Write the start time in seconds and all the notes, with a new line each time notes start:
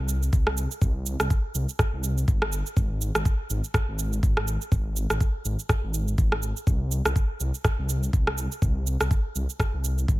0.00 C2
0.09 cabasa
0.23 cabasa
0.33 C2, kick, cabasa
0.47 cross-stick
0.57 cabasa
0.71 cabasa
0.82 C2, kick, cabasa
1.06 cabasa
1.20 C2, cross-stick, cabasa
1.30 kick, cabasa
1.55 C2, cabasa
1.69 cabasa
1.79 kick, cross-stick, cabasa
1.93 C2
2.04 cabasa
2.18 cabasa
2.28 G1, kick, cabasa
2.42 cross-stick
2.52 cabasa
2.66 cabasa
2.77 G#1, kick, cabasa
3.01 cabasa
3.15 G#1, cross-stick, cabasa
3.25 kick, cabasa
3.50 G#1, cabasa
3.64 cabasa
3.74 kick, cross-stick, cabasa
3.88 G#1
3.99 cabasa
4.13 cabasa
4.23 G#1, kick, cabasa
4.37 cross-stick
4.48 cabasa
4.62 cabasa
4.72 G#1, kick, cabasa
4.96 cabasa
5.10 G#1, cross-stick, cabasa
5.21 kick, cabasa
5.45 G#1, cabasa
5.59 cabasa
5.69 kick, cross-stick, cabasa
5.83 G#1
5.94 cabasa
6.08 cabasa
6.18 G#1, kick, cabasa
6.32 cross-stick
6.43 cabasa
6.57 cabasa
6.67 C2, kick, cabasa
6.91 cabasa
7.05 C2, cross-stick, cabasa
7.16 kick, cabasa
7.40 C2, cabasa
7.54 cabasa
7.64 kick, cross-stick, cabasa
7.78 C2
7.89 cabasa
8.03 cabasa
8.13 C2, kick, cabasa
8.27 cross-stick
8.38 cabasa
8.52 cabasa
8.62 C2, kick, cabasa
8.87 cabasa
9.01 C2, cross-stick, cabasa
9.11 kick, cabasa
9.35 C2, cabasa
9.50 cabasa
9.60 kick, cross-stick, cabasa
9.74 C2
9.84 cabasa
9.98 cabasa
10.08 G1, kick, cabasa